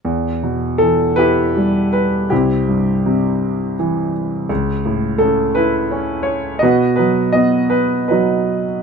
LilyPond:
<<
  \new Staff \with { instrumentName = "Grand piano" } { \time 3/4 \key e \minor \tempo 4 = 81 << { r4 a'8 b'4 b'8 | g'2 r4 | r4 a'8 b'4 cis''8 | dis''8 b'8 dis''8 b'8 b'8. r16 | } \\ { r4. <e' g'>4. | <c' e'>2 r4 | r4. e'4. | <fis' b'>4. r8 <dis' fis'>4 | } >> }
  \new Staff \with { instrumentName = "Grand piano" } { \clef bass \time 3/4 \key e \minor e,8 b,8 e4 g4 | c,8 g,8 c4 e4 | cis,8 a,8 cis4 cis'4 | b,8 fis8 b4 fis4 | }
>>